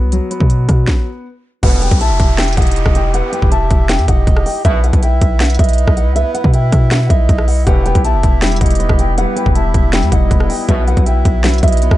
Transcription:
Already playing: F#3 B3
0.03 C2
0.12 F#3, closed hi-hat
0.31 B3, closed hi-hat
0.40 B2, kick
0.50 closed hi-hat
0.69 B2, kick, cross-stick, closed hi-hat
0.88 kick, snare
1.63 E1 G1 F#2 B2 E4 G4 B4 F#5, kick, closed hi-hat, crash, downlifter
1.82 G5, closed hi-hat
1.91 B1, kick, closed hi-hat
2.01 E5 A5, closed hi-hat
2.10 F#1
2.20 E1, kick, closed hi-hat
2.38 G5, snare, closed hi-hat
2.43 closed hi-hat
2.48 closed hi-hat
2.53 closed hi-hat
2.57 E1 D#5 F#5, kick, closed hi-hat
2.62 closed hi-hat
2.67 closed hi-hat
2.71 closed hi-hat
2.76 closed hi-hat
2.86 E1, kick, cross-stick
2.95 G5, closed hi-hat
3.14 B4 F#5, closed hi-hat
3.32 G5, closed hi-hat
3.42 E1, kick
3.52 E5 A5, closed hi-hat
3.71 E1, kick, closed hi-hat
3.89 G5, snare, closed hi-hat
3.99 E2, closed hi-hat
4.08 E1 D#5 F#5, kick, closed hi-hat
4.27 E1, kick, closed hi-hat
4.37 cross-stick
4.46 G5, open hi-hat
4.65 F#1 B1 E2 B2 E4 B4 E5, kick, closed hi-hat
4.84 F#5, closed hi-hat
4.93 B1, kick, closed hi-hat
5.03 E5 G5, closed hi-hat
5.21 B1, kick, closed hi-hat
5.40 F#5, snare, closed hi-hat
5.45 closed hi-hat
5.50 closed hi-hat
5.55 closed hi-hat
5.59 B1 D#5 E5, kick, closed hi-hat
5.64 closed hi-hat
5.69 closed hi-hat
5.73 closed hi-hat
5.78 closed hi-hat
5.87 B1, kick, cross-stick
5.97 F#5, closed hi-hat
6.06 C2
6.15 B4 E5, closed hi-hat
6.34 F#5, closed hi-hat
6.44 B2, kick
6.54 E5 G5, closed hi-hat
6.72 B2, kick, cross-stick, closed hi-hat
6.91 F#5, snare, closed hi-hat
7.09 B1 D#5 E5, kick, closed hi-hat
7.29 B1, kick, closed hi-hat
7.38 cross-stick
7.48 F#5, open hi-hat
7.67 E1 G1 F#2 B2 G4 B4 F#5, kick, closed hi-hat
7.86 B3 G5, closed hi-hat
7.95 B1, kick, closed hi-hat
8.05 E5 A5, closed hi-hat
8.14 F#1
8.23 E1, kick, closed hi-hat
8.42 G3 G5, snare, closed hi-hat
8.47 closed hi-hat
8.52 closed hi-hat
8.56 closed hi-hat
8.61 E1 D#5 F#5, kick, closed hi-hat
8.66 closed hi-hat
8.71 closed hi-hat
8.75 closed hi-hat
8.79 B3, closed hi-hat
8.89 E1, kick, cross-stick
8.99 G5, closed hi-hat
9.18 G3 B4 F#5, closed hi-hat
9.36 B3 G5, closed hi-hat
9.46 E1, kick
9.55 E5 A5, closed hi-hat
9.74 E1, kick, closed hi-hat
9.93 G3 G5, snare, closed hi-hat
10.03 E2, closed hi-hat
10.12 E1 D#5 F#5, kick, closed hi-hat
10.31 E1 B3, kick, closed hi-hat
10.40 cross-stick
10.50 G5, open hi-hat
10.69 F#1 B1 E2 B2 F#3 B4 E5, kick, closed hi-hat
10.87 B3 F#5, closed hi-hat
10.97 B1, kick, closed hi-hat
11.06 E5 G5, closed hi-hat
11.25 B1, kick, closed hi-hat
11.44 F#3 F#5, snare, closed hi-hat
11.49 closed hi-hat
11.54 closed hi-hat
11.58 closed hi-hat
11.63 B1 D#5 E5, kick, closed hi-hat
11.68 closed hi-hat
11.72 closed hi-hat
11.77 closed hi-hat
11.82 B3, closed hi-hat
11.91 B1, kick, cross-stick

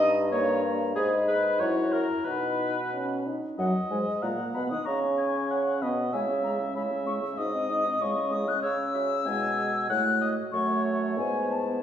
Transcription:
Already playing: G2 D#4 A#5
0.32 A#3 C#5 A#5
0.95 G#2 D#4 G#4 B5
1.28 B4
1.60 F#2 E4 C#5 A#5
1.92 A#4
2.24 B2 D#4 B4 B5
2.93 C#4
3.26 D#4
3.58 F#2 F#3 D#5 F#5
3.91 G#2 G#3 G#5
4.22 A#2 A#3 F#5 A#5
4.55 B2 B3 B5
4.70 D#3 D#4 D#6
4.85 C#3 C#4 A#5 C#6
5.17 G#5
5.51 F#5
5.81 B2 B3 D#5 B5
6.13 C#3 G#3 E4 E5 G#5
6.29 C#4 G#4
6.44 G#3 E4 A#5
6.60 C#4 G#4
6.75 C#3 G#3 E4 E5 B5
6.91 C#4 G#4
7.07 G#3 E4 C#6
7.22 C#4 G#4
7.38 G#2 D#4 F#4 D#5 D#6
7.54 C4 G#4
7.70 D#4 F#4
7.85 C4 G#4
8.00 C#3 G#3 E4 C#6
8.16 C#4 G#4
8.31 G#3 E4 D#6
8.47 C#4 G#4 F#6
8.62 C#3 C#4 G#4 C#5 E6
8.94 F#4 E5
9.26 B2 G#3 E4 G#5
9.58 G#4
9.90 A2 A3 F#4 F#5 F#6
10.21 D#5
10.53 F#2 A3 A4 C#5 C#6
10.85 A4
11.17 G#2 B3 E4 G#5
11.50 A5

